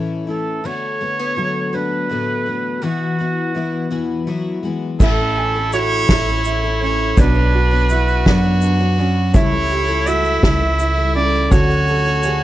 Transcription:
Already playing: A2 E3 A3 C#4 E4 A4
0.27 A3 C#4 E4 A4
0.64 D3 A3 B3 F#4 C#5
1.01 A3 B3 F#4
1.19 B3
1.36 D3 F#3 A3 B3 F#4
1.73 D3 A3 B3 D4 F#4 B4
2.09 A2 D3 A3 B3 F#4
2.46 A3 B3 D4 F#4
2.82 E2 B2 E3 B3 E4 F#4
3.19 E3 B3 E4 F#4
3.55 E3 B3 E4 F#4
3.91 E2 B2 E3 B3 E4 F#4
4.27 E3 F#3 B3 E4 F#4
4.63 E3 G#3 B3 E4 F#4
5.00 A1 A2 A3 C#4 E4 A4 C#5 E5, kick, crash, shaker
5.19 C#4 E4 A4
5.36 G#5, ride
5.55 C#4 E4 A4
5.72 A3 C#4 E4 F#4 A4 C#5, ride, shaker
5.91 shaker
6.09 A1 A2 A3 C#4 E4 A4, kick, snare, ride
6.27 C#4 E4 A4
6.44 E4, ride, shaker
6.63 C#4 E4 A4
6.81 A3 C#4 E4 A4 C#5, ride
7.17 B1 B2 F#3 B3 D4 F#4 B4 C#5, kick, ride, shaker
7.35 B3 D4 F#4 C#5
7.54 F#4, ride
7.71 B3 D4 F#4 C#5
7.89 B3 D4 E4 F#4 C#5, ride, shaker
8.08 shaker
8.26 F#2 B2 F#3 B3 D4 F#4 C#5, kick, snare, ride
8.43 B3 D4 F#4 C#5
8.61 D4, ride, shaker
8.80 B3 D4 F#4 C#5
8.98 B3 C#4 D4 F#4 C#5, ride
9.34 C#2 C#3 G3 A3 E4 A4 C#5 E5, kick, ride, shaker
9.52 G3 E4 A4
9.71 G4, ride
9.88 G3 E4 A4
10.06 G3 A3 E4 F#4 A4 E5, ride, shaker
10.25 shaker
10.43 C#2 C#3 G3 A3 E4 A4 E5, kick, snare, ride
10.61 E4 A4
10.79 E4, ride, shaker
10.97 G3 E4 A4
11.16 C#3 G3 A3 E4 A4 D5, ride
11.50 D2 D3 F#3 C#4 D4 F#4 A4 C#5, kick, ride, shaker
11.70 C#4 F#4 A4, shaker
11.88 A4, ride, shaker
12.05 C#4 F#4 A4, shaker
12.23 D3 C#4 F#4 G#4, ride, shaker
12.27 A4

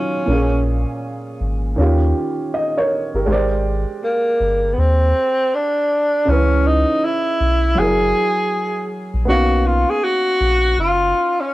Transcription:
Already playing: D#3 F#3 C#4 F4 G#4
0.26 A#1 A#2 A#3
0.30 C#4 G#4
1.41 G#1
1.76 D#2 D#3 C#4 F4
1.82 G4
2.54 D#5
2.77 A#4 C#5
3.14 G1 G4 A#4
3.26 G#1 G#3 G4 A#4
3.31 C5 D5
4.04 A#3
4.40 G1
4.74 B3
4.78 D#2 C4
5.54 D4
6.25 C#2 C#3 C#4
6.29 E3 B4
6.67 D#4
7.04 E4
7.41 B1
7.75 F#1 F#3 E4 G#4
7.79 G#4 A#4
9.14 A#1
9.25 B1 A#3 B3 C#4 F#4
9.30 D#4 F5
9.67 F4
9.90 G#4
10.04 F#4
10.41 A#1
10.78 F#1 F4
11.40 C#4

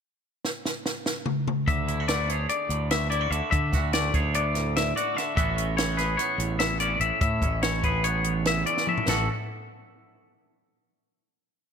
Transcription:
0.45 snare
0.65 snare
0.86 snare
1.06 snare
1.26 mid tom
1.48 mid tom
1.67 D2 D3 E5, kick, closed hi-hat
1.88 E4, closed hi-hat
2.00 F#4
2.08 A3 D5, snare, closed hi-hat
2.29 G#4 C#5, closed hi-hat
2.49 D5, closed hi-hat
2.69 D2 A2, closed hi-hat
2.91 E5, snare, closed hi-hat
3.10 E4 D5, closed hi-hat
3.21 F#4
3.31 D2 D3 E5, closed hi-hat
3.51 D3 E5, kick, closed hi-hat
3.72 D2 F#4, kick, snare, closed hi-hat
3.93 A3 D5, snare, closed hi-hat
4.14 D2 G#4 C#5, kick, closed hi-hat
4.34 B3 D5, closed hi-hat
4.55 A2, snare, closed hi-hat
4.76 E5, snare, closed hi-hat
4.96 F#4 D5, closed hi-hat
5.15 D3 E5, snare, closed hi-hat
5.35 A1 A2 E3 B3 C#4 F#4 E5, kick, closed hi-hat
5.56 C#4, closed hi-hat
5.77 E3 C#5, snare, closed hi-hat
5.97 G#4 B4, snare, closed hi-hat
6.17 B3 C#5, closed hi-hat
6.38 A1 E2, closed hi-hat
6.59 E5, snare, closed hi-hat
6.80 C#4 D5, closed hi-hat
7.00 A1 A2 E5, closed hi-hat
7.21 A2 E5, kick, closed hi-hat
7.42 A1 C#4, kick, closed hi-hat
7.63 E3 C#5, snare, closed hi-hat
7.83 A1 G#4 B4, kick, closed hi-hat
8.04 B3 C#5, closed hi-hat
8.24 E2, closed hi-hat
8.45 E5, snare, closed hi-hat
8.66 C#4 D5, closed hi-hat
8.77 snare
8.86 A2 E5, mid tom
8.98 floor tom
9.07 A1 A2 E3 B3 C#4 F#4 A4, snare, floor tom, crash

